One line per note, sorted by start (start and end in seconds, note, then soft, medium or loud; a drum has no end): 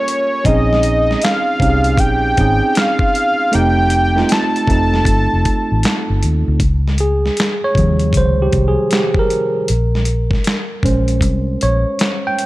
0.00 0.47 A#3 medium
0.00 0.45 C#4 medium
0.00 0.47 F4 medium
0.00 0.47 G4 medium
0.00 0.46 A4 medium
0.00 0.46 A#4 medium
0.00 0.47 C#5 medium
0.08 closed hi-hat medium
0.44 1.14 A#1 loud
0.44 1.37 C4 medium
0.44 1.37 C#4 medium
0.44 1.38 D#4 medium
0.44 1.39 G#4 loud
0.44 1.25 D#5 loud
0.44 kick loud
0.44 closed hi-hat medium
0.73 snare soft
0.83 closed hi-hat medium
1.11 snare soft
1.22 2.01 F5 loud
1.22 snare loud
1.22 closed hi-hat medium
1.26 clap medium
1.60 1.99 C2 medium
1.60 2.24 C4 medium
1.60 2.24 C#4 medium
1.60 2.25 D#4 medium
1.60 1.70 G4 medium
1.60 kick medium
1.60 closed hi-hat medium
1.69 2.29 G#4 medium
1.84 closed hi-hat soft
1.98 2.33 A#1 medium
1.98 2.79 G5 loud
1.98 kick medium
1.98 closed hi-hat medium
2.37 2.60 G#1 medium
2.37 3.29 C4 medium
2.37 3.30 C#4 medium
2.37 3.30 D#4 medium
2.37 3.31 G#4 medium
2.37 kick medium
2.37 closed hi-hat medium
2.75 3.56 F5 loud
2.75 snare loud
2.75 clap medium
2.75 closed hi-hat medium
2.99 kick medium
3.15 closed hi-hat medium
3.52 4.22 F1 loud
3.52 3.98 A3 medium
3.52 3.99 C4 medium
3.52 3.99 D#4 medium
3.52 4.00 G4 medium
3.52 4.33 G5 loud
3.52 closed hi-hat medium
3.90 closed hi-hat medium
4.16 4.58 A3 medium
4.16 4.59 C4 medium
4.16 4.59 D#4 medium
4.16 4.60 F4 medium
4.16 snare soft
4.29 6.23 A5 loud
4.29 snare loud
4.29 closed hi-hat medium
4.33 clap medium
4.56 closed hi-hat soft
4.67 5.02 F1 medium
4.67 5.87 A3 medium
4.67 5.88 C4 medium
4.67 5.89 D#4 medium
4.67 kick medium
4.67 closed hi-hat medium
4.72 5.89 A4 medium
4.94 snare soft
5.05 5.28 G1 medium
5.05 kick medium
5.05 closed hi-hat medium
5.33 5.45 F1 medium
5.45 kick medium
5.45 closed hi-hat medium
5.72 5.83 A1 medium
5.83 snare loud
5.83 clap medium
5.83 closed hi-hat medium
6.10 6.21 G1 medium
6.23 6.45 D#2 medium
6.23 closed hi-hat medium
6.48 6.60 D2 medium
6.60 7.29 C#2 medium
6.60 kick loud
6.60 closed hi-hat medium
6.88 snare soft
6.98 7.60 G#4 medium
6.98 closed hi-hat medium
7.26 snare soft
7.37 snare loud
7.37 closed hi-hat medium
7.41 clap medium
7.64 8.16 C#5 medium
7.75 8.10 D#2 medium
7.75 8.32 C3 medium
7.75 8.31 D#3 medium
7.75 8.31 F3 soft
7.75 8.31 G3 soft
7.75 kick medium
7.75 closed hi-hat medium
7.99 closed hi-hat soft
8.13 8.48 C#2 medium
8.13 kick medium
8.13 closed hi-hat medium
8.17 8.42 C5 medium
8.42 8.67 G4 medium
8.53 8.75 C2 medium
8.53 kick medium
8.53 closed hi-hat medium
8.68 8.79 G#4 medium
8.91 9.05 G4 medium
8.91 snare loud
8.91 clap medium
8.91 closed hi-hat medium
9.14 kick medium
9.19 10.29 A#4 medium
9.30 closed hi-hat medium
9.68 10.37 A#1 medium
9.68 closed hi-hat medium
9.95 snare soft
10.05 closed hi-hat medium
10.31 kick medium
10.31 snare soft
10.44 snare loud
10.44 closed hi-hat medium
10.49 clap medium
10.83 11.22 A#1 medium
10.83 11.96 G#3 soft
10.83 11.95 C#4 medium
10.83 11.96 C5 medium
10.83 kick medium
10.83 closed hi-hat medium
11.08 closed hi-hat soft
11.21 11.56 C2 medium
11.21 kick medium
11.21 closed hi-hat medium
11.61 11.83 A#1 medium
11.61 12.27 C#5 medium
11.61 closed hi-hat medium
11.99 snare loud
11.99 clap medium
11.99 closed hi-hat medium
12.27 12.46 G5 loud
12.39 closed hi-hat medium